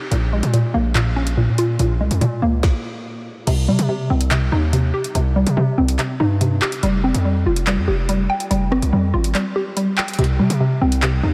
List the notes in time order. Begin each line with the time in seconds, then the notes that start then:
Already playing: C3 C4 D#4 G4
0.11 A#1 A#2, closed hi-hat
0.33 G#3
0.43 A#2, closed hi-hat
0.54 A#2, closed hi-hat
0.74 A#1 A#3
0.95 A#2, clap, closed hi-hat
1.16 C#4
1.27 closed hi-hat
1.37 A#2
1.48 A#2
1.58 F4, closed hi-hat
1.79 A#1 A#2, closed hi-hat
2.00 C2 G#3
2.11 F2, closed hi-hat
2.21 A#2, closed hi-hat
2.42 C#2 A#3
2.63 kick, snare
3.47 C2 C3, closed hi-hat, crash
3.68 C3 G3
3.79 C3, closed hi-hat
3.89 C3
4.10 C2 C4
4.21 closed hi-hat
4.31 C3, clap, closed hi-hat
4.52 D#2 D#4
4.73 C3, closed hi-hat
4.94 G4
5.04 closed hi-hat
5.15 C2 C3, closed hi-hat
5.36 G3
5.47 C3, closed hi-hat
5.57 C3
5.78 C2 C4
5.88 closed hi-hat
5.99 C3, clap, closed hi-hat
6.20 G2 D#4
6.41 C3, closed hi-hat
6.62 G4, clap
6.72 closed hi-hat
6.83 F1 G3, closed hi-hat
7.04 C4
7.14 F2, closed hi-hat
7.25 G3
7.46 F1 F4
7.56 closed hi-hat
7.67 G3, clap, closed hi-hat
7.77 F2
7.88 F1 G4
8.09 G3, closed hi-hat
8.30 G5
8.40 closed hi-hat
8.50 F1 G3, closed hi-hat
8.72 G1 C4, cross-stick
8.82 C2, closed hi-hat
8.93 F2 G3
9.14 G#1 F4
9.24 closed hi-hat
9.35 G3, clap, closed hi-hat
9.56 G4
9.77 G3, closed hi-hat
9.98 G5, clap
10.08 closed hi-hat
10.13 closed hi-hat
10.19 C2 C3, closed hi-hat
10.24 closed hi-hat
10.39 C3 G3
10.50 C3, closed hi-hat
10.60 C3
10.81 C2 C4
10.92 closed hi-hat
11.02 C3, clap, closed hi-hat
11.23 D#2 D#4